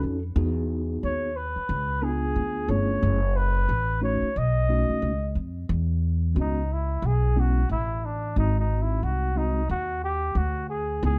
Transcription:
Already playing: tine electric piano C#4 D#4 F#4 A4
0.03 upright bass F2
0.36 upright bass E2, tine electric piano B3 D#4 F#4 G#4
1.03 upright bass D#2, flugelhorn C#5
1.36 flugelhorn B4
1.56 muted upright bass stroke
1.69 upright bass C#2
2.02 tine electric piano B3 D4 E4 G#4, flugelhorn G#4
2.09 tine electric piano F4
2.36 upright bass D2
2.68 upright bass G1, tine electric piano A3 C#4 E4 G#4, flugelhorn C#5
3.03 upright bass F#1
3.36 flugelhorn B4
3.69 upright bass A1
4.01 tine electric piano A3 C#4 D#4 F#4, flugelhorn C#5
4.22 muted upright bass stroke
4.36 upright bass B1, flugelhorn D#5
4.69 tine electric piano A3 C#4 D#4 F#4
4.89 muted upright bass stroke
5.02 upright bass C#2
5.35 upright bass F2
5.69 upright bass E2
6.35 upright bass C#2, tine electric piano G#3 B3 C#4 F#4
6.40 flugelhorn D#4
6.73 flugelhorn E4
7.02 upright bass B1, flugelhorn G#4
7.36 tine electric piano G#3 B3 C#4 E4
7.40 flugelhorn F#4
7.69 upright bass A1, flugelhorn E4
8.05 flugelhorn D4
8.36 upright bass G#1, tine electric piano G#3 C4 D#4 F#4, flugelhorn D#4
8.59 flugelhorn D#4
8.82 flugelhorn E4
9.03 upright bass C2, flugelhorn F#4
9.35 tine electric piano G#3 C4 D#4 F#4, flugelhorn D#4
9.69 upright bass D#2, flugelhorn F#4
10.04 flugelhorn G4
10.35 upright bass D2, flugelhorn F#4
10.70 flugelhorn G#4
11.03 upright bass C#2, tine electric piano B3 D#4 E4 G#4, flugelhorn G#4

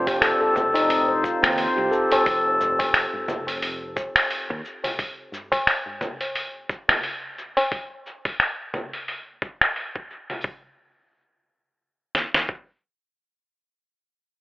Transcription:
Already playing: fretless electric bass F1
0.07 handpan G4, kick, open hi-hat, tabla na, shaker
0.21 handpan A4, finger snap, open hi-hat, shaker
0.41 handpan A4, tabla ge
0.55 fretless electric bass F1, handpan A4, kick, low conga, shaker
0.74 handpan D#4, open hi-hat, tabla na, tabla tin, shaker
0.89 handpan C4, open hi-hat, shaker
1.08 handpan C5
1.23 handpan F4, kick, shaker
1.42 fretless electric bass D#2, handpan C4, finger snap, open hi-hat, tabla tin, low conga, shaker
1.57 handpan C5, open hi-hat, shaker
1.77 fretless electric bass C2, handpan G4
1.91 handpan A4, shaker
2.11 handpan A4, open hi-hat, tabla na, tabla tin, shaker
2.26 fretless electric bass F1, kick, open hi-hat, shaker
2.45 tabla na
2.61 tabla ge, shaker
2.79 kick, open hi-hat, tabla na, shaker
2.94 finger snap, open hi-hat, shaker
3.14 tabla ge
3.28 fretless electric bass F1, kick, low conga, shaker
3.47 open hi-hat, tabla na, tabla tin, shaker
3.62 open hi-hat, shaker
3.96 kick, tabla tin, shaker
4.16 finger snap, open hi-hat, tabla na, shaker
4.31 open hi-hat, shaker
4.50 fretless electric bass D#2, kick
4.65 shaker
4.84 open hi-hat, tabla tin, low conga, shaker
4.99 kick, open hi-hat, shaker
5.32 tabla ge, shaker
5.52 kick, open hi-hat, tabla na, shaker
5.67 finger snap, open hi-hat, shaker
5.86 tabla ge
6.01 kick, low conga, shaker
6.21 open hi-hat, tabla na, tabla tin, shaker
6.35 open hi-hat, shaker
6.69 kick, shaker
6.88 finger snap, open hi-hat, tabla tin, low conga, shaker
7.03 open hi-hat, shaker
7.38 shaker
7.57 open hi-hat, tabla na, tabla tin, shaker
7.72 kick, open hi-hat, shaker
8.06 shaker
8.25 kick, open hi-hat, shaker
8.40 finger snap, open hi-hat, shaker
8.74 kick, low conga, shaker
8.93 open hi-hat, shaker
9.08 open hi-hat, shaker
9.42 kick, shaker
9.61 finger snap, open hi-hat, shaker
9.76 open hi-hat, shaker
9.96 kick
10.11 shaker
10.30 open hi-hat, low conga, shaker
10.44 kick
12.15 snare
12.34 snare
12.49 kick

